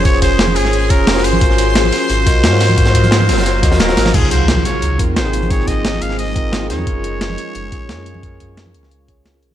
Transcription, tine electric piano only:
X:1
M:4/4
L:1/16
Q:1/4=176
K:Db
V:1 name="Tine electric piano"
[DFAc]8- [DFAc]2 [DFAd]3 [FGBc]3 | [FGBc]8- [FGBc]2 [FGBe]3 [FGBc]3 | [FGBc]8- [FGBc]2 [FGBe]3 [FGBc]3 | [C,EFA]8- [C,EFA]2 [CEFB]3 [CEFA]3 |
[CEFA]8- [CEFA]2 [CEFB]3 [CEFA]3 | [DFAB]8- [DFAB]2 [DFAd]3 [DFAB]3 | [DFAB]8- [DFAB]2 [DFAd]3 [DFAB]3 |]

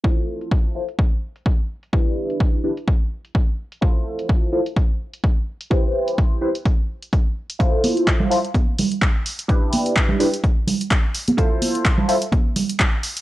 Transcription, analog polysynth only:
X:1
M:4/4
L:1/8
Q:"Swing 16ths" 1/4=127
K:Flyd
V:1 name="Analog polysynth"
[EFAc]3 [EFAc] z4 | [DEGB]3 [DEGB] z4 | [EFAc]3 [EFAc] z4 | [EGBc]3 [EGBc] z4 |
[EFAc]3 [EFAc] z4 | [DEGB]3 [DEGB] z4 | [EFAc]3 [EFAc] z4 |]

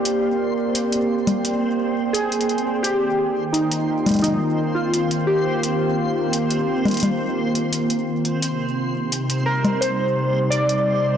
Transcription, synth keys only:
X:1
M:4/4
L:1/16
Q:1/4=86
K:Eblyd
V:1 name="Synth keys"
G12 _A4 | G4 E4 E3 F3 G2- | G12- G2 z2 | z6 B2 c4 d4 |]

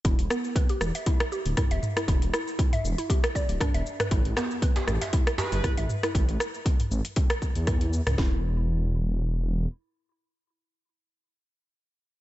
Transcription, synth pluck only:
X:1
M:4/4
L:1/16
Q:"Swing 16ths" 1/4=118
K:Em
V:1 name="Synth pluck"
E z B, z B G z e E z G z E e z E | E z E z E e z E G z d z D e z B | E z B, z B G z e E z G z E e z E | z16 |
E2 z12 z2 | z16 |]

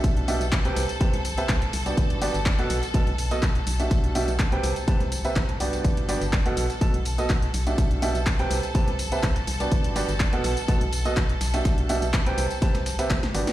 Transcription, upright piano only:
X:1
M:4/4
L:1/16
Q:1/4=124
K:Clyd
V:1 name="Upright piano"
[B,,DFGe]2 [B,,DFGe] z2 [C,CGBg]2 z [C,CGBa] z2 [C,CGBe] z3 [G,,B,FGd]- | [G,,B,FGd]2 [G,,B,FGd] z2 [B,,B,FAf]2 z [B,,B,FAa] z2 [B,,B,FA^d] z3 [B,,=DFGe]- | [B,,DFGe]2 [B,,DFGe] z2 [C,CGBg]2 z [C,CGBa] z2 [C,CGBe] z2 [G,,B,FGd]2- | [G,,B,FGd]2 [G,,B,FGd] z2 [B,,B,FAf]2 z [B,,B,FAa] z2 [B,,B,FA^d] z3 [B,,=DFGe]- |
[B,,DFGe]2 [B,,DFGe] z2 [C,CGBg]2 z [C,CGBa] z2 [C,CGBe] z3 [G,,B,FGd]- | [G,,B,FGd]2 [G,,B,FGd] z2 [B,,B,FAf]2 z [B,,B,FAa] z2 [B,,B,FA^d] z3 [B,,=DFGe]- | [B,,DFGe]2 [B,,DFGe] z2 [C,CGBg]2 z [C,CGBa] z2 [C,CGBe] z2 [G,,B,FGd]2 |]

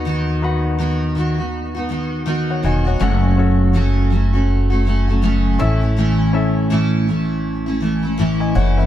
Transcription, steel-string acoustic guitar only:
X:1
M:4/4
L:1/16
Q:"Swing 16ths" 1/4=81
K:Alyd
V:1 name="Steel-string acoustic guitar"
[D,B,DF]4 [D,B,DF]2 [D,B,DF] [B,DF]2 [B,DF] [D,B,DF]2 [D,B,DF]2 [D,B,DF] [B,DF] | [F,,C,F,A,CF]4 [F,,C,F,A,CF]2 [F,A,CF] [F,A,CF]2 [F,A,CF] [F,A,CF] [F,A,CF] [F,,C,F,A,CF]2 [E,A,CE] [A,CE] | [A,,E,A,CE]4 [A,,E,A,CE]2 [E,A,CE]3 [A,CE] [E,A,CE] [A,CE] [A,,E,A,CE]2 [E,A,CE] [A,CE] |]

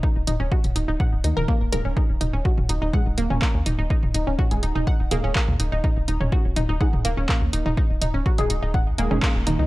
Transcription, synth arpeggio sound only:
X:1
M:4/4
L:1/16
Q:1/4=124
K:Ebm
V:1 name="Synth arpeggio sound"
E z E D G z E E g z E B B, z B D | E z E D G z E E g z B, D B, z E E | E z E D G z E E g z B, D B, z E E | E z E D G z E E g z B, D B, z E E |
E z E D G z E E g z B, D B, z E E |]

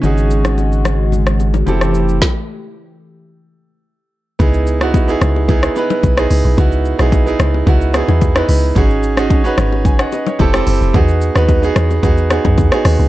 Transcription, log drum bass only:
X:1
M:4/4
L:1/16
Q:1/4=110
K:C#m
V:1 name="Log drum bass" clef=bass
z16 | z16 | C,,6 C,,4 z2 B,,,2 C,, B,,, | C,,3 B,,,3 C,,2 C,,3 E,,3 C,,2 |
G,,,6 G,,,4 z2 =F,,,2 ^F,,, =F,,, | E,,3 D,,3 E,,2 E,,3 F,, E,, z D,, C,, |]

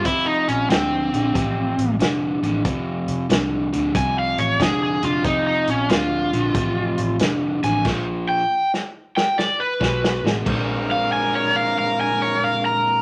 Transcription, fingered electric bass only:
X:1
M:4/4
L:1/8
Q:"Swing" 1/4=92
K:Bbmix
V:1 name="Fingered electric bass" clef=bass
F,,, B,,, D,, B,,, =A,,, A,,, F,,, A,,, | F,,, F,,, C,, D,, C,, =A,,, F,,, F,,, | F,,, B,,, D,, B,,, =A,,, A,,, F,,, A,,, | B,,, z4 z =B,,, =A,,, |
B,,,8 |]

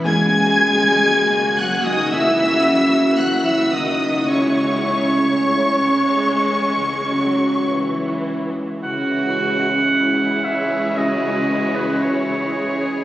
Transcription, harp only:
X:1
M:4/4
L:1/8
Q:1/4=56
K:C#m
V:1 name="Harp" clef=bass
(3F,, C, D, (3C, F C, (3F,, C ^A, (3C, F C, | (3C, G, A, (3G, E G, (3C, C D (3G, E G, | (3C, G, C (3E G E (3C, G, C (3E G E |]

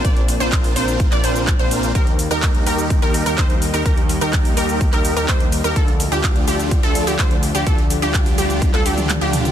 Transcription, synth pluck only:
X:1
M:4/4
L:1/16
Q:1/4=126
K:Eblyd
V:1 name="Synth pluck"
d z2 c3 c3 d c2 z c3 | B z2 B3 B3 B2 B c z2 B | B z2 B3 B3 B2 B c z2 B | A z2 G3 G3 A2 G c z2 G |
A z2 G3 G3 A G2 z G3 |]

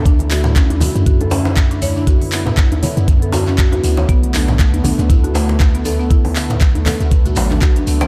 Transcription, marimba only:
X:1
M:4/4
L:1/16
Q:"Swing 16ths" 1/4=119
K:Bm
V:1 name="Marimba"
D z F z C D F z F A C z2 D c D | F z4 z c z2 A F C F F z c | B, z D z A, B, D z E F A, z2 B, A B, | E z4 z A z2 F F, D F D z B, |]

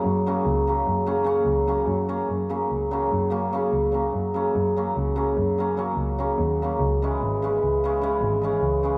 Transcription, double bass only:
X:1
M:11/8
L:1/8
Q:1/4=147
K:F#mix
V:1 name="Double bass" clef=bass
F,,2 C,,2 F,,3 C,,2 F,,2 | F,,2 C,,2 F,,3 C,,2 F,,2 | F,,2 C,,2 F,,3 C,,2 D,,2 | C,,2 G,,,2 C,,3 G,,,2 C,,2 |]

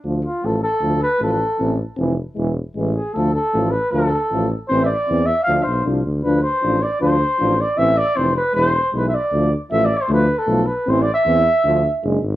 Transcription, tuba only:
X:1
M:2/4
L:1/8
Q:"Swing 16ths" 1/4=155
K:none
V:1 name="Tuba" clef=bass
D,,2 A,,,2 | D,,2 A,,,2 | A,,,2 F,,,2 | E,,,2 A,,,2 |
D,,2 A,,,2 | D,,2 A,,,2 | A,,,2 E,,2 | D,, B,,, C,, D,, |
D,,2 A,,,2 | D,,2 A,,,2 | A,,,2 F,,,2 | E,,,2 B,,,2 |
D,,2 A,,,2 | D,,2 B,,,2 | A,,,2 E,,2 | D,,2 ^F,,, ^G,,, |]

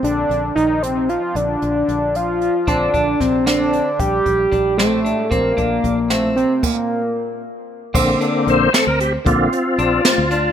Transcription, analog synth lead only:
X:1
M:5/8
L:1/8
Q:1/4=114
K:Bb
V:1 name="Analog synth lead"
D2 E C F | D3 F2 | D2 C D2 | G3 A,2 |
B,3 A, C | B,3 z2 | z4 z | z4 z |]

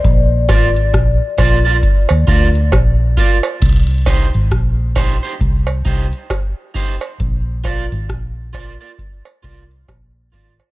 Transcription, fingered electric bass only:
X:1
M:4/4
L:1/16
Q:"Swing 16ths" 1/4=67
K:Cm
V:1 name="Fingered electric bass" clef=bass
B,,,2 A,,,2 B,,, z B,,,2 z E,, D,,2 B,,,2 z2 | C,,3 A,,, B,,,3 z C,,2 C,, z4 z | B,,,3 A,,, B,,,3 z3 C,,2 B,,,2 A,,, z |]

